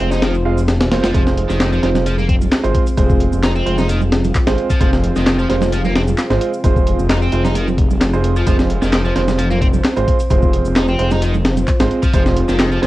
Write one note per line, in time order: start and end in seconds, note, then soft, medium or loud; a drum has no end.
0.00 0.82 F1 medium
0.00 0.19 G#3 medium
0.00 0.11 C4 medium
0.00 0.19 C4 medium
0.00 12.87 C4 medium
0.00 0.19 F4 medium
0.00 12.87 F4 medium
0.00 0.19 C5 medium
0.00 1.12 C5 medium
0.00 closed hi-hat medium
0.12 0.21 D#4 loud
0.12 snare soft
0.12 shaker medium
0.22 0.34 D#3 medium
0.22 snare loud
0.22 closed hi-hat medium
0.22 shaker medium
0.35 shaker soft
0.45 0.58 G#3 loud
0.45 0.58 C4 medium
0.45 0.58 F4 medium
0.45 0.58 F5 loud
0.58 shaker medium
0.68 snare loud
0.68 closed hi-hat medium
0.68 shaker medium
0.80 0.93 D#1 medium
0.80 snare loud
0.80 closed hi-hat medium
0.80 shaker soft
0.91 1.01 F1 medium
0.91 1.04 G#3 medium
0.91 1.04 C4 medium
0.91 1.04 F4 medium
0.91 1.04 C5 medium
0.91 snare loud
0.91 closed hi-hat medium
1.04 1.12 F1 medium
1.04 1.13 F3 medium
1.04 snare loud
1.04 closed hi-hat medium
1.04 shaker medium
1.14 1.45 F1 loud
1.14 1.23 F3 medium
1.14 1.80 G#3 medium
1.14 1.80 C4 medium
1.14 1.80 F4 medium
1.14 8.45 G#4 medium
1.14 1.80 C5 loud
1.14 kick loud
1.14 closed hi-hat medium
1.14 shaker medium
1.27 snare medium
1.27 shaker soft
1.37 closed hi-hat medium
1.49 1.79 F1 loud
1.49 1.71 D#3 medium
1.49 snare soft
1.49 high conga medium
1.49 shaker medium
1.60 snare loud
1.60 clap loud
1.60 closed hi-hat medium
1.60 shaker medium
1.72 1.82 F3 medium
1.72 shaker soft
1.83 2.48 F1 medium
1.83 1.88 D#3 medium
1.83 2.03 G#3 medium
1.83 2.03 C4 medium
1.83 2.03 F4 medium
1.83 2.03 C5 medium
1.83 snare soft
1.83 closed hi-hat medium
1.95 snare medium
1.95 low conga medium
1.95 shaker medium
2.06 2.15 F3 medium
2.06 closed hi-hat medium
2.06 high conga medium
2.06 shaker medium
2.18 2.26 A#3 medium
2.18 low conga medium
2.18 shaker soft
2.29 2.34 C4 medium
2.29 kick medium
2.29 closed hi-hat medium
2.41 low conga medium
2.41 shaker medium
2.52 snare loud
2.52 clap loud
2.52 closed hi-hat medium
2.52 shaker medium
2.63 2.72 G#1 medium
2.63 2.83 G#3 loud
2.63 2.83 C4 medium
2.63 2.83 F4 medium
2.63 2.83 C5 loud
2.63 closed hi-hat soft
2.63 shaker soft
2.75 kick loud
2.75 closed hi-hat medium
2.87 closed hi-hat soft
2.87 shaker medium
2.97 3.28 F1 loud
2.97 3.64 G#3 medium
2.97 3.64 C4 medium
2.97 3.64 F4 medium
2.97 3.64 C5 loud
2.97 kick loud
2.97 closed hi-hat medium
2.97 shaker medium
3.10 kick medium
3.10 shaker soft
3.20 closed hi-hat medium
3.32 3.62 F1 loud
3.32 high conga medium
3.32 shaker medium
3.43 3.52 D#4 medium
3.43 snare loud
3.43 clap loud
3.43 closed hi-hat medium
3.43 shaker medium
3.55 3.77 C4 medium
3.55 shaker soft
3.66 4.31 F1 medium
3.66 3.86 G#3 medium
3.66 3.86 C4 medium
3.66 3.86 F4 medium
3.66 3.86 C5 medium
3.66 closed hi-hat medium
3.78 3.88 D#4 loud
3.78 snare soft
3.78 low conga medium
3.78 shaker medium
3.88 4.01 D#3 medium
3.88 closed hi-hat medium
3.88 high conga medium
3.88 shaker medium
4.01 low conga medium
4.01 shaker soft
4.12 snare loud
4.12 closed hi-hat medium
4.24 closed hi-hat soft
4.24 low conga medium
4.24 shaker medium
4.35 kick medium
4.35 clap loud
4.35 closed hi-hat medium
4.35 shaker medium
4.47 4.55 G#1 medium
4.47 4.66 G#3 loud
4.47 4.66 C4 medium
4.47 4.66 F4 medium
4.47 4.66 C5 loud
4.47 snare loud
4.47 closed hi-hat medium
4.47 shaker soft
4.58 closed hi-hat soft
4.70 4.80 F3 medium
4.70 kick medium
4.70 closed hi-hat medium
4.70 shaker medium
4.80 5.11 F1 loud
4.80 4.89 F3 medium
4.80 5.47 G#3 medium
4.80 5.47 C4 medium
4.80 5.47 F4 medium
4.80 5.47 C5 loud
4.80 kick loud
4.80 closed hi-hat medium
4.80 shaker medium
4.93 snare medium
4.93 shaker soft
5.04 closed hi-hat medium
5.16 5.45 F1 loud
5.16 5.38 D#3 medium
5.16 snare soft
5.16 high conga medium
5.16 shaker medium
5.27 snare loud
5.27 clap loud
5.27 closed hi-hat medium
5.27 shaker medium
5.39 5.49 F3 medium
5.39 shaker soft
5.49 6.14 F1 medium
5.49 5.55 D#3 medium
5.49 5.69 G#3 medium
5.49 5.69 C4 medium
5.49 5.69 F4 medium
5.49 5.69 C5 medium
5.49 snare soft
5.49 closed hi-hat medium
5.61 snare medium
5.61 low conga medium
5.61 shaker medium
5.72 5.81 F3 medium
5.72 closed hi-hat medium
5.72 high conga medium
5.72 shaker medium
5.85 5.92 A#3 medium
5.85 low conga medium
5.85 shaker soft
5.96 6.01 C4 medium
5.96 snare loud
5.96 closed hi-hat medium
6.08 low conga medium
6.08 shaker medium
6.18 snare soft
6.18 clap loud
6.18 closed hi-hat medium
6.18 shaker medium
6.30 6.38 G#1 medium
6.30 6.50 G#3 loud
6.30 6.50 C4 medium
6.30 6.50 F4 medium
6.30 6.50 C5 loud
6.30 snare soft
6.30 shaker soft
6.41 closed hi-hat medium
6.54 shaker medium
6.64 6.94 F1 loud
6.64 7.30 G#3 medium
6.64 7.30 C4 medium
6.64 7.30 F4 medium
6.64 7.30 C5 loud
6.64 kick loud
6.64 closed hi-hat medium
6.64 shaker medium
6.76 kick loud
6.76 shaker soft
6.87 closed hi-hat medium
6.99 7.29 F1 loud
6.99 high conga medium
6.99 shaker medium
7.10 7.18 D#4 medium
7.10 snare loud
7.10 clap loud
7.10 closed hi-hat medium
7.10 shaker medium
7.22 7.44 C4 medium
7.22 shaker soft
7.32 7.78 F1 medium
7.32 7.52 G#3 medium
7.32 7.52 C4 medium
7.32 7.52 F4 medium
7.32 7.52 C5 medium
7.32 closed hi-hat medium
7.45 7.54 D#4 loud
7.45 snare soft
7.45 low conga medium
7.45 shaker medium
7.55 7.67 D#3 medium
7.55 closed hi-hat medium
7.55 high conga medium
7.55 shaker soft
7.68 low conga medium
7.68 shaker soft
7.78 8.43 F1 medium
7.78 kick loud
7.78 closed hi-hat medium
7.91 low conga medium
7.91 shaker medium
8.01 snare loud
8.01 clap loud
8.01 closed hi-hat medium
8.01 shaker medium
8.13 8.33 G#3 loud
8.13 8.33 C4 medium
8.13 8.33 F4 medium
8.13 8.33 C5 loud
8.13 shaker soft
8.24 closed hi-hat medium
8.36 8.46 F3 medium
8.36 shaker medium
8.47 8.78 F1 loud
8.47 8.56 F3 medium
8.47 9.13 G#3 medium
8.47 9.13 C4 medium
8.47 9.13 F4 medium
8.47 12.87 C5 medium
8.47 9.13 C5 loud
8.47 kick loud
8.47 closed hi-hat medium
8.47 shaker medium
8.59 snare medium
8.59 shaker soft
8.70 closed hi-hat medium
8.82 9.12 F1 loud
8.82 9.04 D#3 medium
8.82 snare soft
8.82 high conga medium
8.82 shaker medium
8.93 snare loud
8.93 clap loud
8.93 closed hi-hat medium
8.93 shaker medium
9.05 9.15 F3 medium
9.05 shaker soft
9.16 9.80 F1 medium
9.16 9.21 D#3 medium
9.16 9.35 G#3 medium
9.16 9.35 C4 medium
9.16 9.35 F4 medium
9.16 9.35 C5 medium
9.16 snare soft
9.16 closed hi-hat medium
9.28 snare medium
9.28 low conga medium
9.28 shaker medium
9.39 9.47 F3 medium
9.39 closed hi-hat medium
9.39 high conga medium
9.39 shaker soft
9.51 9.58 A#3 medium
9.51 low conga medium
9.51 shaker soft
9.61 9.67 C4 medium
9.61 kick loud
9.61 closed hi-hat medium
9.73 low conga medium
9.73 shaker medium
9.84 snare loud
9.84 clap loud
9.84 closed hi-hat medium
9.84 shaker soft
9.96 10.05 G#1 medium
9.96 10.16 G#3 medium
9.96 10.16 C4 medium
9.96 10.16 F4 medium
9.96 10.16 C5 loud
9.96 closed hi-hat soft
9.96 shaker soft
10.08 kick medium
10.08 closed hi-hat medium
10.19 closed hi-hat soft
10.19 shaker medium
10.30 10.61 F1 loud
10.30 10.96 G#3 medium
10.30 10.96 C4 medium
10.30 10.96 F4 medium
10.30 10.96 C5 loud
10.30 kick loud
10.30 closed hi-hat medium
10.30 shaker soft
10.42 kick loud
10.42 shaker soft
10.53 closed hi-hat medium
10.65 10.95 F1 loud
10.65 high conga medium
10.65 shaker medium
10.76 10.85 D#4 medium
10.76 snare loud
10.76 clap loud
10.76 closed hi-hat medium
10.76 shaker medium
10.88 11.10 C4 medium
10.88 shaker soft
10.99 11.64 F1 medium
10.99 11.19 G#3 medium
10.99 11.19 C4 medium
10.99 11.19 F4 medium
10.99 11.19 C5 medium
10.99 closed hi-hat medium
11.11 11.21 D#4 loud
11.11 snare soft
11.11 low conga medium
11.11 shaker medium
11.21 11.34 D#3 medium
11.21 closed hi-hat medium
11.21 high conga medium
11.21 shaker soft
11.34 low conga medium
11.34 shaker soft
11.45 snare loud
11.45 closed hi-hat medium
11.57 closed hi-hat soft
11.57 low conga medium
11.57 shaker medium
11.67 kick medium
11.67 clap loud
11.67 closed hi-hat medium
11.67 shaker medium
11.80 11.88 G#1 medium
11.80 11.99 G#3 loud
11.80 11.99 C4 medium
11.80 11.99 F4 medium
11.80 11.99 C5 loud
11.80 snare loud
11.80 closed hi-hat medium
11.80 shaker soft
11.91 closed hi-hat soft
12.03 12.13 F3 medium
12.03 kick medium
12.03 closed hi-hat medium
12.03 shaker medium
12.13 12.44 F1 loud
12.13 12.22 F3 medium
12.13 12.80 G#3 medium
12.13 12.80 C4 medium
12.13 12.80 F4 medium
12.13 12.80 C5 loud
12.13 kick loud
12.13 closed hi-hat medium
12.13 shaker medium
12.26 snare medium
12.26 shaker soft
12.37 closed hi-hat medium
12.48 12.78 F1 loud
12.48 12.71 D#3 medium
12.48 snare soft
12.48 high conga medium
12.48 shaker medium
12.59 snare loud
12.59 clap loud
12.59 closed hi-hat medium
12.59 shaker medium
12.72 12.82 F3 medium
12.72 shaker soft
12.82 12.87 F1 medium
12.82 12.87 D#3 medium
12.82 12.87 G#3 medium
12.82 12.87 C4 medium
12.82 12.87 F4 medium
12.82 12.87 C5 medium
12.82 snare soft
12.82 closed hi-hat medium